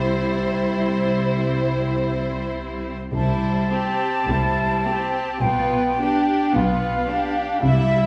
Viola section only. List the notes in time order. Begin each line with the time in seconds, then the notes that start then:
Already playing: G3 C4
3.15 G3
3.72 C4
4.29 G3
4.87 C4
5.45 B3
6.01 D4
6.55 B3
7.09 D4
7.64 G3